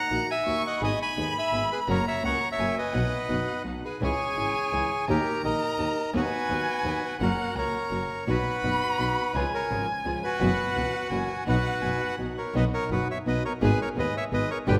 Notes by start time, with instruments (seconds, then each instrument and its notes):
Already playing: bandoneon F#5 A#5, violin A#5
0.10 double bass A#1, nylon-string guitar D#3 A#3 D#4 F#4, string section A#3 D#4 F#4
0.30 bandoneon E5 G#5
0.46 double bass D#2, nylon-string guitar D#3 A#3 D#4 F#4, string section A#3 D#4 F#4, violin C#6
0.67 bandoneon D#5 F#5
0.80 double bass G#1, nylon-string guitar D#3 G#3 B3 D#4 G#4, string section B3 D#4 G#4, bandoneon D#5 G#5, violin B5
1.02 bandoneon G#5 B5
1.17 double bass D#2, nylon-string guitar D#3 G#3 B3 D#4 G#4, string section B3 D#4 G#4
1.39 bandoneon E5 G#5
1.51 double bass G#1, nylon-string guitar D#3 G#3 B3 D#4 G#4, string section B3 D#4 G#4
1.72 bandoneon G#4 B4
1.87 double bass F#1, nylon-string guitar C#3 F#3 A#3 C#4 F#4, string section A#3 C#4 F#4, bandoneon A#4 C#5, violin A#5
2.08 bandoneon C#5 E5
2.23 double bass C#2, nylon-string guitar C#3 F#3 A#3 C#4 F#4, string section A#3 C#4 F#4, bandoneon C#5 F#5
2.52 bandoneon C#5 E5
2.58 double bass F#1, nylon-string guitar C#3 F#3 A#3 C#4 F#4, string section A#3 C#4 F#4, violin G#5
2.78 bandoneon B4 D#5
2.93 double bass B1, nylon-string guitar B2 F#3 B3 D#4 F#4, string section B3 D#4 F#4, violin F#5
3.28 double bass F#1, nylon-string guitar B2 F#3 B3 D#4 F#4, string section B3 D#4 F#4
3.64 double bass B1, nylon-string guitar B2 F#3 B3 D#4 F#4, string section B3 D#4 F#4
3.85 bandoneon G#4 B4
4.00 double bass C#2, nylon-string guitar C#3 E3 G#3 C#4 E4, string section C#4 E4 G#4, bandoneon G#4 C#5, violin G#5
4.36 double bass G#1, nylon-string guitar C#3 E3 G#3 C#4 E4, string section C#4 E4 G#4
4.72 double bass C#2, nylon-string guitar C#3 E3 G#3 C#4 E4, string section C#4 E4 G#4
5.07 double bass D#2, nylon-string guitar D#3 A#3 D#4 G4, string section A#3 D#4 G4, bandoneon G4 A#4, violin A#5
5.43 double bass A#1, nylon-string guitar D#3 A#3 D#4 G4, string section A#3 D#4 G4, bandoneon A#4 D#5
5.78 double bass D#2, nylon-string guitar D#3 A#3 D#4 G4, string section A#3 D#4 G4
6.13 double bass D#2, nylon-string guitar D#3 F#3 B3 D#4 B4, string section B3 D#4 F#4, bandoneon F#4 B4, violin G#5
6.49 double bass D#2, nylon-string guitar D#3 F#3 B3 D#4 B4, string section B3 D#4 F#4
6.84 double bass D#2, nylon-string guitar D#3 F#3 B3 D#4 B4, string section B3 D#4 F#4
7.20 double bass F#1, nylon-string guitar C#3 F#3 A#3 C#4 F#4, string section A#3 C#4 F#4, bandoneon F#4 A#4, violin F#5
7.55 double bass C#2, nylon-string guitar C#3 F#3 A#3 C#4 F#4, string section A#3 C#4 F#4, bandoneon A#4 C#5, violin A#5
7.91 double bass F#1, nylon-string guitar C#3 F#3 A#3 C#4 F#4, string section A#3 C#4 F#4
8.27 double bass B1, nylon-string guitar B2 F#3 B3 D#4 F#4, string section B3 D#4 F#4, bandoneon F#4 B4, violin B5
8.63 double bass F#1, nylon-string guitar B2 F#3 B3 D#4 F#4, string section B3 D#4 F#4
8.98 double bass B1, nylon-string guitar B2 F#3 B3 D#4 F#4, string section B3 D#4 F#4
9.34 double bass C#2, nylon-string guitar C#3 F3 G#3 C#4 F4, string section C#4 F4 G#4, violin G#5
9.54 bandoneon A#4 C#5
9.69 double bass G#1, nylon-string guitar C#3 F3 G#3 C#4 F4, string section C#4 F4 G#4
10.04 double bass C#2, nylon-string guitar C#3 F3 G#3 C#4 F4, string section C#4 F4 G#4
10.24 bandoneon F#4 B4
10.40 double bass F#1, nylon-string guitar B2 E3 B3 C#4 F#4, string section B3 E4 F#4, violin F#5
10.75 double bass C#2, nylon-string guitar B2 E3 B3 C#4 F#4, string section B3 E4 F#4
11.10 double bass F#1, nylon-string guitar C#3 E3 A#3 C#4 F#4, string section A#3 E4 F#4, violin G#5
11.46 double bass B1, nylon-string guitar B2 F#3 B3 D#4 F#4, string section B3 D#4 F#4, bandoneon F#4 B4, violin F#5
11.81 double bass F#1, nylon-string guitar B2 F#3 B3 D#4 F#4, string section B3 D#4 F#4, violin G#5
12.00 violin F#5
12.18 double bass B1, nylon-string guitar B2 F#3 B3 D#4 F#4, string section B3 D#4 F#4
12.38 bandoneon A#4 C#5
12.54 double bass B1, nylon-string guitar B2 F#3 B3 D#4 F#4, string section B3 D#4 F#4, bandoneon B4 D#5
12.74 bandoneon A#4 C#5
12.90 double bass F#1, nylon-string guitar B2 F#3 B3 D#4 F#4, string section B3 D#4 F#4, bandoneon F#4 B4
13.11 bandoneon C#5 E5
13.26 double bass B1, nylon-string guitar B2 F#3 B3 D#4 F#4, string section B3 D#4 F#4, bandoneon B4 D#5
13.45 bandoneon A#4 C#5
13.61 double bass G#1, nylon-string guitar D#3 G#3 B3 D#4 G#4, string section B3 D#4 G#4, bandoneon G#4 B4
13.82 bandoneon A#4 C#5
13.96 double bass D#2, nylon-string guitar D#3 G#3 B3 D#4 G#4, string section B3 D#4 G#4, bandoneon B4 D#5
14.17 bandoneon C#5 E5
14.31 double bass G#1, nylon-string guitar D#3 G#3 B3 D#4 G#4, string section B3 D#4 G#4, bandoneon B4 D#5
14.51 bandoneon A#4 C#5
14.66 double bass G1, nylon-string guitar B2 D3 G3 B3 G4, string section B3 D4 G4, bandoneon G4 B4